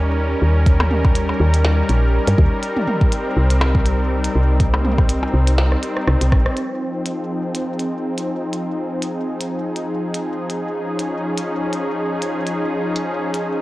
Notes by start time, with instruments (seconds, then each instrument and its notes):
Already playing: fm bass D#2, analog synth pad G3 C#4 D#4 A#4
0.42 fm bass D#2
0.66 kick, closed hi-hat
0.80 mid tom, percussion blips
0.91 mid tom
1.05 kick, percussion blips
1.15 closed hi-hat
1.29 percussion blips
1.40 fm bass D#2
1.54 closed hi-hat
1.65 snare
1.89 fm bass A#1, closed hi-hat
2.28 fm bass G2, closed hi-hat
2.38 fm bass D#2, kick
2.63 closed hi-hat
2.72 analog synth pad C4
2.77 mid tom
2.88 mid tom
3.01 kick
3.12 closed hi-hat
3.37 fm bass C2
3.51 closed hi-hat
3.61 snare, percussion blips
3.75 kick
3.86 closed hi-hat
4.24 closed hi-hat
4.35 fm bass C2
4.60 kick, closed hi-hat
4.73 mid tom, percussion blips
4.79 mid tom
4.84 mid tom
4.91 mid tom
4.98 kick, percussion blips
5.09 closed hi-hat
5.23 percussion blips
5.34 fm bass C2
5.47 closed hi-hat
5.58 cross-stick, snare
5.72 cross-stick
5.83 closed hi-hat
5.97 cross-stick
6.07 fm bass C2, cross-stick
6.21 fm bass C2, closed hi-hat
6.32 fm bass A#1, kick, cross-stick
6.46 cross-stick
6.56 analog synth pad F3, closed hi-hat
6.83 analog synth pad G#4
7.06 closed hi-hat
7.55 closed hi-hat
7.79 closed hi-hat
8.18 closed hi-hat
8.53 closed hi-hat
9.02 closed hi-hat
9.41 closed hi-hat
9.76 closed hi-hat
10.14 closed hi-hat
10.50 closed hi-hat
10.60 analog synth pad C#4
10.99 closed hi-hat
11.37 closed hi-hat
11.73 closed hi-hat
12.22 closed hi-hat
12.47 closed hi-hat
12.96 closed hi-hat
13.34 closed hi-hat